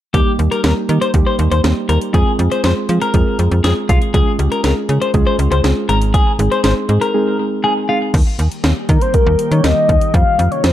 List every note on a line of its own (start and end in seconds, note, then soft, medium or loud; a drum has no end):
0.14 0.24 D#2 loud
0.14 0.36 G3 loud
0.14 0.36 A#3 medium
0.14 0.36 D#4 medium
0.14 0.36 G4 loud
0.14 0.31 G4 medium
0.14 kick loud
0.14 closed hi-hat medium
0.39 0.49 D#2 medium
0.39 0.61 G3 medium
0.39 0.61 A#3 medium
0.39 0.61 D#4 medium
0.39 0.61 G4 medium
0.39 closed hi-hat medium
0.52 0.60 A#4 medium
0.52 closed hi-hat soft
0.64 0.74 D#2 loud
0.64 0.86 G3 medium
0.64 0.86 A#3 medium
0.64 0.86 D#4 medium
0.64 0.86 G4 medium
0.64 0.73 A#4 medium
0.64 snare loud
0.64 closed hi-hat medium
0.89 0.99 D#3 loud
0.89 1.11 G3 medium
0.89 1.11 A#3 medium
0.89 1.11 D#4 medium
0.89 1.11 G4 medium
0.89 closed hi-hat medium
1.02 1.10 C5 medium
1.02 closed hi-hat soft
1.14 1.24 D#2 loud
1.14 1.36 G3 loud
1.14 1.36 A#3 medium
1.14 1.36 D#4 medium
1.14 1.36 G4 loud
1.14 kick medium
1.14 closed hi-hat medium
1.27 1.35 C5 medium
1.39 1.49 D#2 loud
1.39 1.61 G3 medium
1.39 1.61 A#3 medium
1.39 1.61 D#4 medium
1.39 1.61 G4 medium
1.39 closed hi-hat medium
1.51 1.61 D#2 medium
1.51 1.60 C5 medium
1.51 closed hi-hat soft
1.64 1.74 D#2 loud
1.64 1.86 G3 medium
1.64 1.86 A#3 medium
1.64 1.86 D#4 medium
1.64 1.86 G4 medium
1.64 snare loud
1.64 closed hi-hat medium
1.89 1.99 D#2 medium
1.89 2.11 G3 medium
1.89 2.11 A#3 medium
1.89 2.11 D#4 medium
1.89 2.11 G4 medium
1.89 1.98 A#4 medium
1.89 closed hi-hat medium
2.02 closed hi-hat soft
2.14 2.24 F2 loud
2.14 2.36 G#3 loud
2.14 2.36 C4 medium
2.14 2.36 F4 loud
2.14 2.36 G#4 loud
2.14 2.32 G#4 medium
2.14 kick loud
2.14 closed hi-hat medium
2.39 2.49 F2 loud
2.39 2.61 G#3 medium
2.39 2.61 C4 medium
2.39 2.61 F4 medium
2.39 2.61 G#4 medium
2.39 closed hi-hat medium
2.52 2.60 C5 medium
2.52 closed hi-hat soft
2.64 2.74 F2 loud
2.64 2.86 G#3 medium
2.64 2.86 C4 medium
2.64 2.86 F4 medium
2.64 2.86 G#4 medium
2.64 2.73 C5 medium
2.64 snare loud
2.64 closed hi-hat medium
2.89 2.99 F3 medium
2.89 3.11 G#3 medium
2.89 3.11 C4 medium
2.89 3.11 F4 medium
2.89 3.11 G#4 medium
2.89 closed hi-hat medium
3.02 3.37 A#4 medium
3.02 closed hi-hat soft
3.14 3.24 F2 loud
3.14 3.36 G#3 loud
3.14 3.36 C4 medium
3.14 3.36 F4 loud
3.14 3.36 G#4 loud
3.14 kick medium
3.14 closed hi-hat medium
3.39 3.49 F2 loud
3.39 3.61 G#3 medium
3.39 3.61 C4 medium
3.39 3.61 F4 medium
3.39 3.61 G#4 medium
3.39 closed hi-hat medium
3.51 3.61 F2 medium
3.51 closed hi-hat soft
3.64 3.74 F2 medium
3.64 3.86 G#3 medium
3.64 3.86 C4 medium
3.64 3.86 F4 medium
3.64 3.86 G#4 medium
3.64 3.73 G#4 medium
3.64 snare loud
3.64 closed hi-hat medium
3.89 3.99 C2 medium
3.89 4.11 G#3 medium
3.89 4.11 C4 medium
3.89 4.11 F4 medium
3.89 3.98 F4 medium
3.89 4.11 G#4 medium
3.89 kick medium
3.89 closed hi-hat medium
4.02 closed hi-hat soft
4.14 4.24 C#2 loud
4.14 4.36 G#3 loud
4.14 4.36 C#4 medium
4.14 4.36 F4 loud
4.14 4.36 G#4 loud
4.14 4.31 G#4 medium
4.14 kick loud
4.14 closed hi-hat medium
4.39 4.49 C#2 loud
4.39 4.61 G#3 medium
4.39 4.61 C#4 medium
4.39 4.61 F4 medium
4.39 4.61 G4 medium
4.39 closed hi-hat medium
4.52 4.60 A#4 medium
4.52 closed hi-hat soft
4.64 4.74 C#2 loud
4.64 4.86 G#3 medium
4.64 4.86 C#4 medium
4.64 4.86 F4 medium
4.64 4.86 G#4 medium
4.64 4.73 A#4 medium
4.64 snare loud
4.64 closed hi-hat medium
4.89 4.99 C#3 loud
4.89 5.11 G#3 medium
4.89 5.11 C#4 medium
4.89 5.11 F4 medium
4.89 5.11 G#4 medium
4.89 closed hi-hat medium
5.02 5.10 C5 medium
5.02 closed hi-hat soft
5.14 5.24 C#2 medium
5.14 5.36 G#3 loud
5.14 5.36 C#4 loud
5.14 5.36 F4 medium
5.14 5.36 G#4 loud
5.14 kick medium
5.14 closed hi-hat medium
5.27 5.35 C5 medium
5.39 5.49 C#2 loud
5.39 5.61 G#3 medium
5.39 5.61 C#4 medium
5.39 5.61 F4 medium
5.39 5.61 G#4 medium
5.39 closed hi-hat medium
5.51 5.61 C#2 loud
5.51 5.60 C5 medium
5.51 closed hi-hat soft
5.64 5.74 C#2 loud
5.64 5.86 G#3 medium
5.64 5.86 C#4 medium
5.64 5.86 F4 medium
5.64 5.86 G#4 medium
5.64 snare loud
5.64 closed hi-hat medium
5.89 6.18 G#1 medium
5.89 6.33 G#3 medium
5.89 6.33 C4 medium
5.89 6.33 D#4 medium
5.89 6.33 G#4 medium
5.89 5.98 A#4 medium
5.89 closed hi-hat medium
6.02 closed hi-hat medium
6.14 6.31 G#4 medium
6.14 kick loud
6.14 closed hi-hat medium
6.39 6.49 G#1 loud
6.39 6.61 G#3 medium
6.39 6.61 C4 medium
6.39 6.61 D#4 medium
6.39 6.61 G#4 medium
6.39 closed hi-hat medium
6.52 6.60 C5 medium
6.52 closed hi-hat soft
6.64 6.74 G#1 loud
6.64 6.86 G#3 medium
6.64 6.86 C4 medium
6.64 6.86 D#4 medium
6.64 6.86 G#4 medium
6.64 6.73 C5 medium
6.64 snare loud
6.64 closed hi-hat medium
6.89 6.99 G#2 medium
6.89 7.11 G#3 medium
6.89 7.11 C4 medium
6.89 7.11 D#4 medium
6.89 7.11 G#4 medium
6.89 closed hi-hat medium
7.01 7.37 A#4 medium
7.01 closed hi-hat soft
7.14 7.36 G#3 loud
7.14 7.36 C4 medium
7.14 7.36 D#4 loud
7.14 7.36 G#4 loud
7.39 7.61 G#3 medium
7.39 7.61 C4 medium
7.39 7.61 D#4 medium
7.39 7.61 G#4 medium
7.64 7.86 G#3 medium
7.64 7.86 C4 medium
7.64 7.86 D#4 medium
7.64 7.86 G#4 medium
7.64 7.73 G#4 medium
7.89 8.11 G#3 medium
7.89 8.11 C4 medium
7.89 8.11 D#4 medium
7.89 7.98 F4 medium
7.89 8.11 G#4 medium
8.14 8.24 D#2 loud
8.14 10.12 D#3 medium
8.14 10.12 G3 medium
8.14 10.12 A#3 medium
8.14 10.12 G4 medium
8.14 kick loud
8.14 closed hi-hat medium
8.14 crash medium
8.39 8.49 D#2 medium
8.39 closed hi-hat medium
8.52 closed hi-hat soft
8.64 8.74 D#2 loud
8.64 snare loud
8.64 closed hi-hat medium
8.89 8.99 D#3 medium
8.89 9.03 A#4 medium
8.89 kick medium
8.89 closed hi-hat medium
9.01 9.16 C5 medium
9.01 closed hi-hat soft
9.14 9.53 A#4 medium
9.14 kick medium
9.14 closed hi-hat medium
9.26 9.36 D#2 loud
9.39 closed hi-hat medium
9.51 9.61 D#3 medium
9.51 9.65 C#5 medium
9.51 closed hi-hat soft
9.64 9.74 D#2 loud
9.64 10.16 D#5 loud
9.64 snare loud
9.64 closed hi-hat medium
9.89 9.99 D#2 loud
9.89 kick loud
9.89 closed hi-hat medium
10.01 closed hi-hat medium
10.14 10.24 F2 loud
10.14 10.73 C3 medium
10.14 10.73 F3 medium
10.14 10.73 G#3 medium
10.14 10.73 F4 medium
10.14 10.53 F5 loud
10.14 kick loud
10.14 closed hi-hat medium
10.39 10.49 F2 loud
10.39 closed hi-hat medium
10.51 10.65 C#5 loud
10.51 closed hi-hat soft
10.64 10.73 F2 loud
10.64 10.73 C5 medium
10.64 snare loud
10.64 closed hi-hat medium